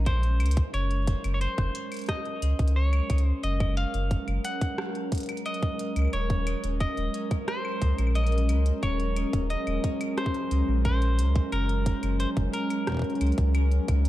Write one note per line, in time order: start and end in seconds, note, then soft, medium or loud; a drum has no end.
0.00 0.42 A#1 loud
0.00 14.09 F#3 medium
0.00 14.09 G#3 medium
0.00 14.09 C#4 loud
0.00 14.09 A#4 medium
0.06 0.70 C5 medium
0.06 kick loud
0.06 closed hi-hat medium
0.06 claves medium
0.23 closed hi-hat soft
0.40 0.63 C#2 medium
0.40 closed hi-hat soft
0.40 claves medium
0.46 closed hi-hat medium
0.51 closed hi-hat medium
0.57 kick loud
0.57 closed hi-hat medium
0.74 1.16 F#1 loud
0.74 1.33 C#5 medium
0.74 closed hi-hat soft
0.74 claves soft
0.91 closed hi-hat soft
1.07 kick loud
1.07 closed hi-hat medium
1.24 1.47 F#1 medium
1.24 closed hi-hat medium
1.24 claves medium
1.34 1.41 C#5 medium
1.41 2.08 C5 loud
1.41 closed hi-hat medium
1.58 1.69 F#1 medium
1.58 kick loud
1.58 closed hi-hat soft
1.58 claves medium
1.75 closed hi-hat loud
1.92 closed hi-hat soft
1.92 claves soft
1.94 closed hi-hat soft
1.97 closed hi-hat soft
1.99 closed hi-hat soft
2.01 closed hi-hat soft
2.04 closed hi-hat soft
2.06 cross-stick loud
2.06 closed hi-hat soft
2.09 2.72 D#5 loud
2.09 kick loud
2.09 closed hi-hat medium
2.25 closed hi-hat soft
2.42 2.54 C#2 medium
2.42 closed hi-hat medium
2.42 claves soft
2.59 3.01 C#2 medium
2.59 kick loud
2.59 closed hi-hat medium
2.68 closed hi-hat medium
2.76 3.25 C#5 loud
2.93 closed hi-hat soft
2.93 claves medium
3.10 3.32 C#2 medium
3.10 kick loud
3.10 closed hi-hat loud
3.10 claves medium
3.18 closed hi-hat medium
3.25 3.43 C5 loud
3.43 3.85 F#1 loud
3.43 3.77 D#5 loud
3.43 closed hi-hat soft
3.60 kick loud
3.60 closed hi-hat soft
3.60 claves medium
3.77 4.41 F5 loud
3.77 closed hi-hat medium
3.94 4.17 F#1 medium
3.94 closed hi-hat medium
4.11 kick loud
4.11 closed hi-hat medium
4.28 4.39 F#1 medium
4.28 closed hi-hat soft
4.28 claves soft
4.45 5.45 F#5 loud
4.45 closed hi-hat medium
4.61 kick loud
4.61 closed hi-hat soft
4.78 cross-stick loud
4.78 claves soft
4.95 closed hi-hat soft
5.12 kick loud
5.12 closed hi-hat medium
5.15 closed hi-hat medium
5.18 closed hi-hat medium
5.20 closed hi-hat soft
5.23 closed hi-hat soft
5.26 closed hi-hat soft
5.29 closed hi-hat soft
5.29 claves medium
5.37 closed hi-hat soft
5.46 6.13 D#5 loud
5.46 closed hi-hat soft
5.46 claves medium
5.54 closed hi-hat soft
5.63 kick loud
5.63 closed hi-hat soft
5.79 closed hi-hat medium
5.96 6.08 C#2 loud
5.96 closed hi-hat soft
5.96 claves soft
5.99 claves soft
6.02 claves soft
6.05 claves soft
6.07 claves soft
6.10 closed hi-hat soft
6.10 claves soft
6.13 6.55 D#1 medium
6.13 6.80 C#5 loud
6.13 claves soft
6.30 kick loud
6.30 closed hi-hat soft
6.47 closed hi-hat medium
6.47 claves medium
6.64 6.86 D#1 medium
6.64 closed hi-hat medium
6.80 7.48 D#5 loud
6.80 kick loud
6.80 closed hi-hat medium
6.80 claves soft
6.97 7.09 D#1 medium
6.97 closed hi-hat soft
7.14 closed hi-hat medium
7.31 kick loud
7.31 closed hi-hat soft
7.31 claves soft
7.48 8.15 C5 loud
7.48 cross-stick loud
7.48 closed hi-hat soft
7.65 claves medium
7.82 7.93 C#2 medium
7.82 kick loud
7.82 closed hi-hat medium
7.98 8.51 A#1 loud
7.98 closed hi-hat medium
7.98 claves soft
8.07 claves soft
8.15 8.82 D#5 loud
8.15 closed hi-hat soft
8.15 claves soft
8.24 closed hi-hat soft
8.24 claves soft
8.32 closed hi-hat soft
8.38 closed hi-hat soft
8.49 8.72 C#2 medium
8.49 closed hi-hat medium
8.49 claves medium
8.66 closed hi-hat medium
8.83 9.25 D#1 loud
8.83 9.46 C#5 medium
8.83 kick loud
8.83 closed hi-hat soft
8.83 claves medium
9.00 closed hi-hat soft
9.17 closed hi-hat medium
9.17 claves medium
9.33 9.56 D#1 medium
9.33 kick loud
9.33 closed hi-hat soft
9.50 10.14 D#5 loud
9.50 closed hi-hat soft
9.67 9.78 D#1 medium
9.67 closed hi-hat soft
9.67 claves medium
9.84 kick loud
9.84 closed hi-hat medium
10.01 closed hi-hat soft
10.01 claves medium
10.18 10.84 C5 loud
10.18 cross-stick loud
10.18 closed hi-hat medium
10.26 kick loud
10.34 closed hi-hat soft
10.51 10.63 C#2 medium
10.51 closed hi-hat medium
10.68 11.20 A#1 loud
10.85 11.52 C5 loud
10.85 kick loud
10.85 closed hi-hat soft
10.85 claves medium
11.02 closed hi-hat soft
11.19 11.41 C#2 medium
11.19 closed hi-hat medium
11.36 kick loud
11.36 closed hi-hat soft
11.52 11.94 F#1 loud
11.52 12.16 A#4 loud
11.52 closed hi-hat soft
11.52 claves medium
11.69 closed hi-hat soft
11.86 kick loud
11.86 closed hi-hat medium
12.03 12.26 F#1 medium
12.03 closed hi-hat medium
12.03 claves medium
12.20 12.29 C5 medium
12.20 closed hi-hat medium
12.37 12.48 F#1 medium
12.37 kick loud
12.37 closed hi-hat soft
12.54 14.09 A#4 medium
12.54 closed hi-hat medium
12.70 closed hi-hat soft
12.70 claves medium
12.87 kick soft
12.87 cross-stick loud
12.87 closed hi-hat soft
12.90 kick soft
12.92 kick medium
12.94 kick medium
12.97 kick medium
12.99 kick medium
13.02 kick medium
13.02 closed hi-hat soft
13.10 closed hi-hat soft
13.15 closed hi-hat soft
13.21 13.32 C#2 medium
13.21 closed hi-hat medium
13.21 claves medium
13.27 closed hi-hat soft
13.32 closed hi-hat soft
13.38 13.80 C#2 loud
13.38 kick loud
13.38 closed hi-hat medium
13.55 closed hi-hat medium
13.55 claves medium
13.72 closed hi-hat soft
13.88 14.09 C#2 medium
13.88 kick loud
13.88 closed hi-hat medium
13.88 claves medium
14.05 closed hi-hat medium